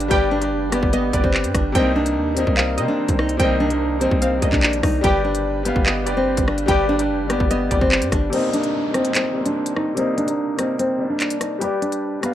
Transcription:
Already playing: grand piano G3 G4 B4 D5 F5, ambient pad D4 G4 B4 G5
0.00 closed hi-hat
0.08 808-style bass G1, grand piano G3 G4 B4, nylon-string guitar G4, synth pluck G5, kick, closed hi-hat
0.13 grand piano D5
0.31 nylon-string guitar D4
0.39 grand piano G3 G4 B4, closed hi-hat
0.44 grand piano D5
0.52 808-style bass F1
0.67 808-style bass G1, grand piano G3
0.72 nylon-string guitar B3, grand piano G4 B4 D5, cross-stick, closed hi-hat
0.83 808-style bass G1, kick
0.93 nylon-string guitar B3, synth pluck D#5, closed hi-hat
1.11 808-style bass G1, grand piano G3 G4 B4, synth pluck D5, kick, closed hi-hat
1.16 grand piano D5
1.24 808-style bass G1, nylon-string guitar C4, kick
1.34 clap
1.44 808-style bass G2, closed hi-hat
1.54 808-style bass G1, nylon-string guitar D4, kick, cross-stick, closed hi-hat
1.72 808-style bass C2, grand piano C3 G3 A#3, ambient pad D#3 A#4 C5, nylon-string guitar C4, synth pluck G5, kick, closed hi-hat
1.77 grand piano D#4
1.96 nylon-string guitar D4
2.06 closed hi-hat
2.16 808-style bass D#2
2.35 grand piano C3 G3 A#3, nylon-string guitar C4, closed hi-hat
2.40 grand piano D#4
2.47 808-style bass C2, kick
2.57 nylon-string guitar C4, synth pluck F5, clap
2.75 grand piano C3 G3 A#3, 808-style bass C3, synth pluck D#5, closed hi-hat
2.81 grand piano C4
2.88 nylon-string guitar D4
3.08 808-style bass C2, kick, closed hi-hat
3.19 nylon-string guitar D#4, cross-stick
3.29 closed hi-hat
3.37 808-style bass C2, grand piano C3 G3 A#3, nylon-string guitar C4, synth pluck G5, kick, closed hi-hat
3.42 grand piano D#4
3.60 nylon-string guitar D4
3.67 grand piano C3 G3 A#3, closed hi-hat
3.73 grand piano D#4
3.99 grand piano C3 G3 A#3, nylon-string guitar C4, closed hi-hat
4.04 grand piano D#4
4.11 808-style bass C2, kick
4.22 nylon-string guitar C4, synth pluck F5, closed hi-hat
4.40 808-style bass C2, grand piano C3 G3 A#3, synth pluck D#5, kick, closed hi-hat
4.45 grand piano D4
4.53 808-style bass A#1, nylon-string guitar D4, kick, clap
4.63 clap
4.73 closed hi-hat
4.83 808-style bass C2, nylon-string guitar D#4, kick, cross-stick, closed hi-hat, open hi-hat
5.01 808-style bass G1, grand piano G3 G4 B4, ambient pad D4 G4 B4 G5, nylon-string guitar G4, synth pluck G5, kick, closed hi-hat
5.06 grand piano D5
5.25 nylon-string guitar D4
5.35 closed hi-hat
5.63 grand piano G3 G4 B4, nylon-string guitar B3, closed hi-hat
5.68 grand piano F5
5.76 808-style bass G1, kick
5.86 nylon-string guitar B3, synth pluck D#5, clap
6.04 808-style bass F1, grand piano G3 G4 B4, synth pluck D5, closed hi-hat
6.09 grand piano D5
6.17 nylon-string guitar C4
6.22 808-style bass G1
6.37 808-style bass G1, kick, closed hi-hat
6.48 nylon-string guitar D4, cross-stick
6.58 closed hi-hat
6.66 808-style bass G1, grand piano G3 G4 B4, nylon-string guitar G4, synth pluck G5, kick, closed hi-hat
6.71 grand piano D5
6.89 nylon-string guitar D4
6.97 grand piano G3 G4 B4, closed hi-hat
7.02 grand piano D5
7.09 808-style bass F1
7.25 808-style bass G1, grand piano G3
7.29 nylon-string guitar B3, grand piano G4 B4 D5, cross-stick, closed hi-hat
7.40 808-style bass G1, kick
7.50 nylon-string guitar B3, synth pluck D#5, closed hi-hat
7.69 808-style bass G1, grand piano G3 G4 B4, synth pluck D5, kick, closed hi-hat
7.74 grand piano D5
7.81 808-style bass G1, nylon-string guitar C4, kick
7.92 clap
8.02 808-style bass G2, closed hi-hat
8.12 808-style bass G1, nylon-string guitar D4, kick, cross-stick, closed hi-hat
8.30 grand piano C3 G3 A#3, nylon-string guitar C4, closed hi-hat, crash, downlifter
8.35 grand piano D#4
8.53 nylon-string guitar D4, closed hi-hat
8.63 closed hi-hat
8.92 grand piano C3 G3 A#3, nylon-string guitar C4, cross-stick, closed hi-hat
8.97 grand piano D#4
9.05 closed hi-hat
9.15 nylon-string guitar C4, clap, closed hi-hat
9.33 grand piano C3 G3 A#3
9.38 grand piano C4
9.46 nylon-string guitar D4, closed hi-hat
9.66 closed hi-hat
9.76 nylon-string guitar D#4, cross-stick
9.95 grand piano C3 G3 A#3, nylon-string guitar C4, closed hi-hat
10.00 grand piano D#4
10.18 nylon-string guitar D4, closed hi-hat
10.25 grand piano C3 G3 A#3, closed hi-hat
10.30 grand piano D#4
10.56 grand piano C3 G3 A#3, nylon-string guitar C4, cross-stick, closed hi-hat
10.61 grand piano D#4
10.79 nylon-string guitar C4, closed hi-hat
10.97 grand piano C3 G3 A#3
11.02 grand piano D4
11.10 nylon-string guitar D4
11.20 clap, closed hi-hat
11.30 closed hi-hat
11.41 nylon-string guitar D#4, cross-stick, closed hi-hat
11.59 grand piano G3 G4 B4, nylon-string guitar G4, closed hi-hat
11.64 grand piano D5
11.82 nylon-string guitar D4, closed hi-hat
11.92 closed hi-hat
12.21 grand piano G3 G4 B4, nylon-string guitar B3, cross-stick, closed hi-hat
12.26 grand piano F5

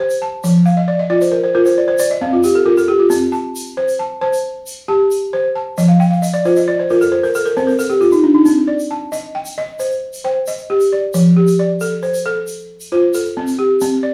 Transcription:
Already playing: balafon A5
0.00 balafon C5
0.10 shaker
0.22 balafon A5
0.44 balafon F3, shaker
0.66 balafon F5, shaker
0.77 balafon D#5
0.88 balafon D5
0.99 balafon D#5
1.10 balafon F4 D5
1.21 balafon C5, shaker
1.32 balafon A#4
1.44 balafon C5
1.55 balafon F4 A#4
1.66 balafon C5, shaker
1.78 balafon D5
1.88 balafon C5
1.98 balafon D5, shaker
2.11 balafon D#5
2.21 balafon C4 F5
2.33 balafon F4
2.44 balafon G4, shaker
2.55 balafon A4
2.65 balafon F4 A#4
2.77 balafon A4, shaker
2.88 balafon G4
2.99 balafon F4
3.10 balafon C4, shaker
3.32 balafon A5, shaker
3.56 shaker
3.66 shaker
3.77 balafon C5
3.88 shaker
3.99 balafon A5
4.21 balafon C5 A5
4.33 shaker
4.67 shaker
4.88 balafon G4 A5
5.11 shaker
5.33 balafon C5
5.55 balafon A5
5.78 balafon F3 D#5, shaker
5.88 balafon F5
6.00 balafon G5, shaker
6.11 balafon F5, shaker
6.22 balafon D#5, shaker
6.34 balafon D5, shaker
6.45 balafon F4 C5, shaker
6.56 balafon D#5, shaker
6.68 balafon D5
6.79 balafon C5
6.90 balafon F4 A#4, shaker
7.01 balafon A4, shaker
7.12 balafon C5
7.23 balafon A#4, shaker
7.35 balafon A4, shaker
7.45 balafon A#4, shaker
7.57 balafon C4 C5, shaker
7.67 balafon A#4, shaker
7.79 balafon A4, shaker
7.90 balafon G4
8.01 balafon F4, shaker
8.12 balafon D#4, shaker
8.24 balafon D4
8.34 balafon D#4
8.45 balafon C4, shaker
8.68 balafon D5
8.79 shaker
8.91 balafon A5
9.12 balafon D#5, shaker
9.35 balafon G5
9.45 shaker
9.58 balafon D#5
9.79 balafon C5, shaker
9.91 shaker
10.13 shaker
10.24 balafon C5 G5
10.47 balafon D#5, shaker
10.58 shaker
10.70 balafon G4
10.80 shaker
10.93 balafon D5
11.14 balafon F3, shaker
11.37 balafon G4
11.47 shaker
11.59 balafon D5
11.80 balafon A4, shaker
12.03 balafon C5, shaker
12.14 shaker
12.26 balafon A4
12.47 shaker
12.59 shaker
12.80 shaker
12.92 balafon F4 C5
13.14 balafon A4, shaker
13.25 shaker
13.37 balafon C4
13.47 shaker
13.59 balafon G4
13.80 balafon C4, shaker
14.03 balafon D5

